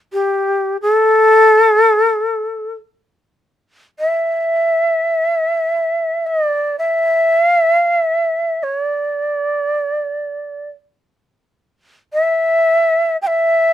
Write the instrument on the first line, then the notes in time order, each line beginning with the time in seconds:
shakuhachi
0.13 G4
0.82 A4
3.99 E5
6.27 D#5
6.46 D5
6.79 E5
7.43 F5
7.60 E5
7.79 F5
7.96 E5
8.63 C#5
8.80 D5
12.13 E5
13.22 G5
13.27 E5